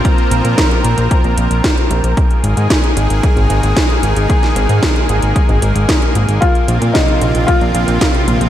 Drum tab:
HH |xxxxxxxxxxxxxxxx|xxxxxxxxxxxxxxxx|xxxxxxxxxxxxxxxx|xxxxxxxxxxxxxxxx|
SD |----o-------o---|----o-------o---|-o--o-------o---|----o-------o---|
BD |o---o---o---o---|o---o---o---o---|o---o---o---o---|o---o---o---o---|